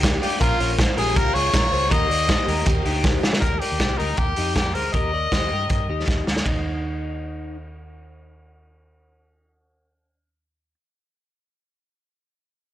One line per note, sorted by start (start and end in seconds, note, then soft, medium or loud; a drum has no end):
0.00 0.17 D2 medium
0.00 0.21 D#3 medium
0.00 0.22 A#3 medium
0.00 0.21 D4 medium
0.00 0.20 D#4 medium
0.00 0.20 G4 medium
0.00 kick loud
0.00 hi-hat pedal medium
0.00 ride medium
0.04 0.19 G4 medium
0.04 snare loud
0.20 0.39 A#3 medium
0.20 0.40 D4 medium
0.20 0.42 D4 medium
0.20 0.41 F4 medium
0.20 0.40 G4 medium
0.20 0.39 G4 medium
0.20 open hi-hat medium
0.39 0.57 A#1 loud
0.39 0.58 A#2 medium
0.39 0.59 F3 medium
0.39 0.59 A#3 medium
0.39 1.88 A#3 medium
0.39 0.58 C#4 medium
0.39 1.88 C#4 medium
0.39 1.88 F4 medium
0.39 0.76 F4 loud
0.39 0.57 F4 medium
0.39 0.60 F4 medium
0.39 1.88 A#4 medium
0.39 0.60 A#4 loud
0.39 kick loud
0.39 hi-hat pedal medium
0.39 ride medium
0.58 0.83 A#1 loud
0.58 0.78 C#4 medium
0.58 0.77 F4 medium
0.58 0.79 A#4 medium
0.58 0.79 C#5 medium
0.58 open hi-hat medium
0.78 0.97 F3 medium
0.78 0.98 A#3 medium
0.78 0.96 C#4 medium
0.78 0.98 F4 medium
0.78 0.97 C5 medium
0.78 kick loud
0.78 snare loud
0.78 hi-hat pedal medium
0.78 ride medium
0.82 0.94 F4 medium
0.96 1.16 A#1 loud
0.96 1.15 A#3 soft
0.96 1.15 C#4 medium
0.96 1.15 F4 medium
0.96 1.33 G4 medium
0.96 1.18 G#4 loud
0.96 1.33 A#4 medium
0.96 open hi-hat medium
1.15 1.32 C#2 loud
1.15 1.34 A#2 medium
1.15 1.34 F3 medium
1.15 1.35 A#3 medium
1.15 1.34 C#4 loud
1.15 1.32 F4 loud
1.15 1.35 A#4 loud
1.15 kick loud
1.15 hi-hat pedal medium
1.15 ride medium
1.34 1.51 C#2 loud
1.34 1.53 A#3 soft
1.34 1.53 C#4 medium
1.34 1.53 F4 medium
1.34 1.54 G#4 medium
1.34 1.93 C#5 loud
1.34 open hi-hat medium
1.52 1.69 A#1 loud
1.52 1.72 F3 medium
1.52 1.72 A#3 medium
1.52 1.71 C#4 medium
1.52 1.73 F4 medium
1.52 1.70 F4 medium
1.52 1.72 A#4 medium
1.52 kick loud
1.52 snare loud
1.52 hi-hat pedal medium
1.52 ride medium
1.71 1.88 C#2 medium
1.71 1.89 A#3 soft
1.71 1.91 C#4 medium
1.71 1.90 F4 medium
1.71 1.91 G#4 medium
1.71 1.90 C5 medium
1.71 open hi-hat medium
1.89 2.07 D#2 loud
1.89 2.09 D#3 medium
1.89 2.09 A#3 medium
1.89 3.02 A#3 medium
1.89 3.02 D#4 medium
1.89 2.08 D#4 medium
1.89 3.02 G4 medium
1.89 2.10 G4 medium
1.89 2.05 G4 medium
1.89 2.09 A#4 loud
1.89 3.02 A#4 medium
1.89 2.66 D#5 loud
1.89 kick loud
1.89 hi-hat pedal medium
1.89 ride medium
2.07 2.34 D#2 loud
2.07 2.28 D#4 medium
2.07 2.27 G4 medium
2.07 2.29 A#4 medium
2.07 2.28 D5 medium
2.11 2.27 A#3 soft
2.11 open hi-hat medium
2.27 2.47 D#3 medium
2.27 2.47 A#3 medium
2.27 2.46 D#4 medium
2.27 2.48 G4 medium
2.27 2.44 G4 medium
2.27 2.48 C5 medium
2.27 kick loud
2.27 snare loud
2.27 ride medium
2.45 2.64 D#2 loud
2.45 2.64 A#3 medium
2.45 2.65 D#4 medium
2.45 2.65 G4 medium
2.45 2.84 G4 medium
2.45 2.83 A#4 medium
2.45 open hi-hat medium
2.65 2.83 D#2 loud
2.65 2.84 D#3 medium
2.65 2.85 A#3 medium
2.65 2.84 D#4 loud
2.65 2.82 G4 loud
2.65 kick loud
2.65 hi-hat pedal medium
2.65 ride medium
2.83 3.17 D2 medium
2.83 3.03 A#3 medium
2.83 3.04 D#4 medium
2.83 3.21 D#4 medium
2.83 3.03 G4 medium
2.83 3.21 G4 medium
2.83 open hi-hat medium
3.02 3.22 D#3 medium
3.02 3.23 A#3 medium
3.02 3.42 A#3 medium
3.02 3.43 D#4 medium
3.02 3.22 D#4 medium
3.02 3.42 G4 medium
3.02 3.20 G4 medium
3.02 3.42 C5 medium
3.02 kick loud
3.02 snare medium
3.21 3.43 A#3 medium
3.21 3.42 D4 medium
3.21 3.42 D#4 medium
3.21 3.42 F4 medium
3.21 3.41 G4 medium
3.21 snare loud
3.33 snare medium
3.40 3.58 D#2 medium
3.40 3.62 G4 medium
3.40 3.61 A#4 medium
3.40 kick medium
3.40 closed hi-hat medium
3.59 3.99 G4 medium
3.59 3.80 A#4 medium
3.59 3.80 D5 medium
3.59 open hi-hat medium
3.72 3.79 D#2 medium
3.80 3.98 G4 medium
3.80 3.98 C5 medium
3.80 kick loud
3.80 snare loud
3.80 closed hi-hat medium
3.98 4.16 D2 medium
3.98 4.19 D#4 medium
3.98 4.35 G4 medium
3.98 4.34 A#4 medium
3.98 open hi-hat medium
4.17 4.34 D#2 medium
4.17 4.56 G4 medium
4.17 kick medium
4.17 closed hi-hat medium
4.36 4.76 F2 medium
4.36 4.57 D#4 medium
4.36 4.56 G4 medium
4.36 open hi-hat medium
4.56 4.75 G4 medium
4.56 4.75 A#4 medium
4.56 kick loud
4.56 snare loud
4.56 closed hi-hat medium
4.74 4.92 D2 medium
4.74 4.94 G#4 soft
4.74 4.92 A#4 medium
4.74 4.94 C5 medium
4.74 open hi-hat medium
4.92 5.26 D#2 medium
4.92 5.14 G4 medium
4.92 5.13 A#4 medium
4.92 6.03 D#5 loud
4.92 kick medium
4.92 closed hi-hat medium
5.13 5.32 A#4 medium
5.13 5.32 D5 medium
5.32 5.48 D#2 medium
5.32 5.51 G4 medium
5.32 5.51 C5 medium
5.32 kick loud
5.32 snare loud
5.32 closed hi-hat medium
5.51 5.68 G2 medium
5.51 5.87 G4 medium
5.51 5.87 A#4 medium
5.69 5.86 G2 medium
5.69 kick medium
5.69 closed hi-hat medium
5.88 6.05 D#2 medium
5.88 6.25 D#4 medium
5.88 6.25 G4 medium
6.08 6.24 D#2 medium
6.08 kick loud
6.08 snare soft
6.27 6.43 D2 medium
6.27 6.46 D4 soft
6.27 6.46 F4 medium
6.27 snare medium
6.36 snare medium
6.45 10.74 D#2 medium
6.45 7.56 D#4 medium
6.45 kick medium
6.45 ride medium